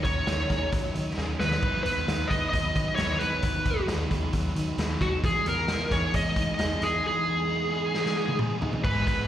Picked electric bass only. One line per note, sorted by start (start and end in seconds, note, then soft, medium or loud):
0.05 0.23 D#2 medium
0.27 0.46 D#2 medium
0.50 0.69 D#2 medium
0.72 0.91 D#2 loud
0.95 1.13 D#3 medium
1.18 1.36 D#2 medium
1.40 1.77 D#2 medium
1.85 2.04 D#2 loud
2.08 2.26 D#2 medium
2.31 2.49 D#2 loud
2.53 2.72 D#2 medium
2.76 2.94 D#3 loud
2.98 3.17 D#2 medium
3.20 3.39 D#2 medium
3.43 3.62 D#2 loud
3.66 3.84 D#2 loud
3.87 4.06 D#2 medium
4.11 4.30 D#2 medium
4.34 4.52 D#2 medium
4.56 4.74 D#3 medium
4.77 4.96 D#2 medium
5.01 5.20 D#2 medium
5.24 5.42 E2 loud
5.46 5.64 E2 medium
5.68 5.87 E2 medium
5.91 6.10 E2 medium
6.14 6.33 E2 loud
6.36 6.55 E3 medium
6.59 6.77 E2 loud
6.82 7.00 E2 medium
8.85 9.03 G#1 medium
9.18 9.27 G#1 medium